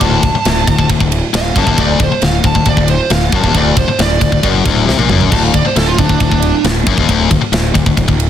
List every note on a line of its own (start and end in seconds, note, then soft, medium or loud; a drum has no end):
0.01 0.22 D1 medium
0.01 0.22 D2 loud
0.01 0.87 A5 medium
0.01 kick medium
0.01 ride medium
0.23 0.33 D1 medium
0.23 0.33 D2 medium
0.23 kick loud
0.23 ride medium
0.34 muted fingered electric bass stroke soft
0.34 muted distorted electric guitar stroke medium
0.45 0.66 D1 medium
0.45 0.63 D2 medium
0.45 snare loud
0.45 ride loud
0.67 0.78 D1 medium
0.67 0.78 D2 medium
0.67 kick medium
0.67 ride medium
0.78 0.89 D1 medium
0.78 0.89 D2 medium
0.78 kick medium
0.89 1.00 D1 medium
0.89 1.00 D2 medium
0.89 kick medium
0.89 ride medium
1.00 1.21 D1 medium
1.00 1.18 D2 medium
1.00 kick medium
1.12 ride medium
1.34 1.55 D1 medium
1.34 1.51 D2 medium
1.34 1.56 F5 loud
1.34 snare loud
1.34 ride loud
1.56 1.66 F#1 loud
1.56 1.67 F#2 loud
1.56 1.78 A5 medium
1.56 kick loud
1.56 ride medium
1.67 1.77 D#1 medium
1.67 1.78 D#2 loud
1.67 kick medium
1.78 1.99 D1 medium
1.78 1.99 D2 loud
1.78 2.00 D5 loud
1.78 kick medium
1.78 ride medium
2.00 2.10 D1 medium
2.00 2.10 D2 medium
2.00 2.23 C5 medium
2.00 kick medium
2.00 ride medium
2.11 muted distorted electric guitar stroke medium
2.11 muted fingered electric bass stroke soft
2.22 2.43 D1 medium
2.22 2.40 D2 medium
2.22 2.45 F5 medium
2.22 snare loud
2.22 ride medium
2.44 2.54 D1 medium
2.44 2.54 D2 medium
2.44 2.67 A5 medium
2.44 kick medium
2.44 ride medium
2.55 2.65 D1 medium
2.55 2.65 D2 medium
2.55 kick medium
2.65 2.76 D1 medium
2.65 2.77 D2 medium
2.65 2.89 D5 medium
2.65 kick medium
2.65 ride medium
2.77 2.98 D1 medium
2.77 2.95 D2 medium
2.77 kick medium
2.88 3.11 C5 medium
2.88 ride medium
3.10 3.31 D1 medium
3.10 3.29 D2 medium
3.10 3.34 F5 medium
3.10 snare loud
3.10 ride loud
3.32 3.43 F#1 medium
3.32 3.43 F#2 loud
3.32 3.56 A5 loud
3.32 kick loud
3.32 ride medium
3.44 3.54 D#1 medium
3.44 3.54 D#2 loud
3.44 kick medium
3.54 3.76 D1 medium
3.54 3.75 D2 loud
3.54 3.77 D5 loud
3.54 kick medium
3.54 ride medium
3.76 3.87 D1 medium
3.76 3.87 D2 medium
3.76 3.99 C5 medium
3.76 kick loud
3.76 ride medium
3.88 muted distorted electric guitar stroke medium
3.88 muted fingered electric bass stroke soft
3.99 4.20 D1 medium
3.99 4.17 D2 medium
3.99 4.43 D5 medium
3.99 snare loud
3.99 ride loud
4.21 4.32 D1 medium
4.21 4.31 D2 medium
4.21 kick medium
4.21 ride medium
4.32 4.42 D1 medium
4.32 4.43 D2 medium
4.32 kick medium
4.43 4.64 F#1 medium
4.43 4.65 F#2 loud
4.43 kick medium
4.43 ride loud
4.65 4.86 D1 medium
4.65 4.86 D2 loud
4.65 kick loud
4.65 ride medium
4.87 4.98 C2 loud
4.87 4.98 C3 loud
4.87 snare medium
4.98 5.09 A#1 medium
4.98 5.09 A#2 loud
4.98 high tom medium
5.09 5.30 F#1 medium
5.09 5.31 F#2 medium
5.09 mid tom medium
5.21 floor tom medium
5.32 5.53 D1 loud
5.32 5.52 D2 loud
5.32 5.44 A5 loud
5.32 kick loud
5.32 crash loud
5.44 5.54 F5 medium
5.54 5.64 D1 medium
5.54 5.64 D2 medium
5.54 5.67 D5 medium
5.54 kick loud
5.54 ride medium
5.65 5.77 C5 medium
5.65 muted distorted electric guitar stroke medium
5.65 muted fingered electric bass stroke soft
5.76 5.97 D1 medium
5.76 5.94 D2 medium
5.76 5.87 A4 medium
5.76 snare loud
5.76 ride loud
5.88 5.98 F4 medium
5.98 6.09 D1 medium
5.98 6.08 D2 medium
5.98 6.20 D4 medium
5.98 kick medium
5.98 ride medium
6.09 6.20 D1 medium
6.09 6.20 D2 medium
6.09 kick medium
6.20 6.31 D1 medium
6.20 6.31 D2 medium
6.20 6.64 D4 loud
6.20 kick medium
6.20 ride loud
6.31 6.52 D1 medium
6.31 6.49 D2 medium
6.31 kick medium
6.42 ride medium
6.64 6.85 D1 medium
6.64 6.83 D2 medium
6.64 snare loud
6.64 ride medium
6.87 6.97 F#1 medium
6.87 6.97 F#2 medium
6.87 kick loud
6.87 ride medium
6.98 7.08 D#1 medium
6.98 7.08 D#2 medium
6.98 kick medium
7.09 7.30 D1 medium
7.09 7.29 D2 loud
7.09 kick loud
7.09 ride medium
7.30 7.41 D1 medium
7.30 7.40 D2 medium
7.30 kick loud
7.30 ride medium
7.41 muted distorted electric guitar stroke medium
7.41 muted fingered electric bass stroke soft
7.52 7.73 D1 medium
7.52 7.71 D2 medium
7.52 snare loud
7.52 ride medium
7.74 7.85 D1 medium
7.74 7.85 D2 medium
7.74 kick medium
7.74 ride medium
7.86 7.96 D1 medium
7.86 7.96 D2 medium
7.86 kick medium
7.97 8.07 D1 medium
7.97 8.06 D2 medium
7.97 kick medium
7.97 ride loud
8.07 8.29 D1 medium
8.07 8.26 D2 medium
8.07 kick medium
8.20 ride medium